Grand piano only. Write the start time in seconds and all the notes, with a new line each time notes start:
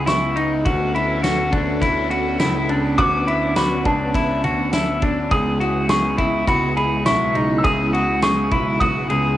Already playing: C#2
0.66 D2
1.53 D2
1.82 D2
2.41 C#2
2.69 C#2
2.98 D2
3.86 C#2
4.44 D2
5.31 C#2
6.19 C#2
6.48 C#2
7.06 B1
7.35 B1
7.64 C#2
8.52 B1
9.10 C#2